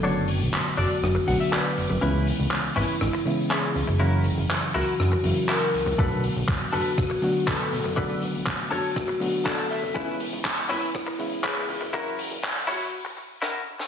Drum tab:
HH |--o---o---o---o-|--o---o---o---o-|--o---o---o---o-|--o---o---o---o-|
SH |----------------|----------------|----------------|xxxxx-xxx-xxx-xx|
CP |----x-------x---|----x-------x---|----x-------x---|----x-------x---|
SD |--------r-------|--------r-------|--------r-------|--------r-------|
BD |----------------|----------------|----------------|o---o---o---o---|

HH |--o---o---o---o-|--o---o---o---o-|--o---o---------|
SH |xxxxx-xxx-xxx-xx|xxxxx-xxx-xxx-xx|xxxxx-xx--------|
CP |----x-------x---|----x-------x---|----x-----------|
SD |--------r-------|--------r-------|------------o--o|
BD |o---o---o---o---|o---o---o---o---|o---o-----------|